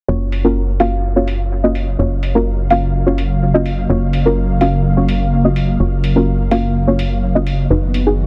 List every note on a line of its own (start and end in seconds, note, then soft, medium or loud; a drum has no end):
0.08 1.97 F#1 medium
0.08 7.66 C#3 medium
0.08 7.66 F#3 medium
0.08 7.66 A#3 medium
0.08 0.42 A#3 medium
0.08 0.42 C#4 medium
0.08 0.42 F4 medium
0.08 0.42 F#4 medium
0.08 0.42 C#5 loud
0.08 7.66 F5 medium
0.32 open hi-hat loud
0.45 0.61 A#3 medium
0.45 0.61 C#4 medium
0.45 0.61 F4 medium
0.45 0.61 F#4 medium
0.45 0.61 A#4 loud
0.80 1.13 A#3 medium
0.80 1.13 C#4 medium
0.80 1.13 F4 medium
0.80 1.13 F#4 medium
0.80 1.13 F5 loud
0.80 open hi-hat medium
1.16 1.32 A#3 medium
1.16 1.32 C#4 medium
1.16 1.32 F4 medium
1.16 1.32 F#4 medium
1.16 1.32 C#5 medium
1.28 open hi-hat loud
1.64 1.80 A#3 medium
1.64 1.80 C#4 medium
1.64 1.80 F4 medium
1.64 1.80 F#4 medium
1.64 1.80 D#5 medium
1.75 open hi-hat medium
1.99 3.87 F#1 medium
1.99 2.32 A#3 medium
1.99 2.32 C#4 medium
1.99 2.32 F4 medium
1.99 2.32 F#4 medium
1.99 2.32 C#5 loud
2.23 open hi-hat loud
2.35 2.51 A#3 medium
2.35 2.51 C#4 medium
2.35 2.51 F4 medium
2.35 2.51 F#4 medium
2.35 2.51 A#4 loud
2.70 3.04 A#3 medium
2.70 3.04 C#4 medium
2.70 3.04 F4 medium
2.70 3.04 F#4 medium
2.70 3.04 F5 loud
2.70 open hi-hat medium
3.06 3.23 A#3 medium
3.06 3.23 C#4 medium
3.06 3.23 F4 medium
3.06 3.23 F#4 medium
3.06 3.23 C#5 medium
3.18 open hi-hat loud
3.54 3.70 A#3 medium
3.54 3.70 C#4 medium
3.54 3.70 F4 medium
3.54 3.70 F#4 medium
3.54 3.70 D#5 loud
3.66 open hi-hat medium
3.89 5.78 F#1 medium
3.89 4.23 A#3 medium
3.89 4.23 C#4 medium
3.89 4.23 F4 medium
3.89 4.23 F#4 medium
3.89 4.23 C#5 loud
4.13 open hi-hat loud
4.26 4.42 A#3 medium
4.26 4.42 C#4 medium
4.26 4.42 F4 medium
4.26 4.42 F#4 medium
4.26 4.42 A#4 loud
4.61 4.94 A#3 medium
4.61 4.94 C#4 medium
4.61 4.94 F4 medium
4.61 4.94 F#4 medium
4.61 4.94 F5 loud
4.61 open hi-hat medium
4.97 5.13 A#3 medium
4.97 5.13 C#4 medium
4.97 5.13 F4 medium
4.97 5.13 F#4 medium
4.97 5.13 C#5 medium
5.09 open hi-hat loud
5.45 5.61 A#3 medium
5.45 5.61 C#4 medium
5.45 5.61 F4 medium
5.45 5.61 F#4 medium
5.45 5.61 D#5 medium
5.56 open hi-hat medium
5.80 7.68 F#1 medium
5.80 6.13 A#3 medium
5.80 6.13 C#4 medium
5.80 6.13 F4 medium
5.80 6.13 F#4 medium
5.80 6.13 C#5 loud
6.04 open hi-hat loud
6.16 6.32 A#3 medium
6.16 6.32 C#4 medium
6.16 6.32 F4 medium
6.16 6.32 F#4 medium
6.16 6.32 A#4 loud
6.51 6.84 A#3 medium
6.51 6.84 C#4 medium
6.51 6.84 F4 medium
6.51 6.84 F#4 medium
6.51 6.84 F5 loud
6.51 open hi-hat medium
6.87 7.04 A#3 medium
6.87 7.04 C#4 medium
6.87 7.04 F4 medium
6.87 7.04 F#4 medium
6.87 7.04 C#5 medium
6.99 open hi-hat loud
7.35 7.51 A#3 medium
7.35 7.51 C#4 medium
7.35 7.51 F4 medium
7.35 7.51 F#4 medium
7.35 7.51 D#5 loud
7.47 open hi-hat medium
7.70 8.27 F#1 medium
7.70 8.27 D#3 medium
7.70 8.27 F#3 medium
7.70 8.27 B3 medium
7.70 8.04 D#4 medium
7.70 8.04 F#4 medium
7.70 8.27 F#4 medium
7.70 8.04 B4 loud
7.94 open hi-hat loud
8.06 8.23 D#4 medium
8.06 8.23 F#4 medium
8.06 8.23 G#4 loud